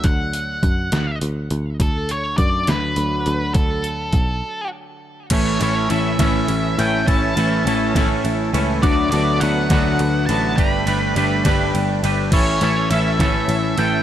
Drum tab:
CC |------|------|------|x-----|
RD |------|------|------|xxxxxx|
HH |xxxxxx|xxxxxx|xxx---|------|
SD |---o--|---o--|------|---o--|
BD |o-o---|o-o---|o-o---|o--o--|

CC |------|------|------|x-----|
RD |xxxxxx|xxxxxx|xxxxxx|-xxxxx|
HH |------|------|------|------|
SD |---o--|---o--|---o--|---o--|
BD |o--o--|o--o--|o--o--|o--o--|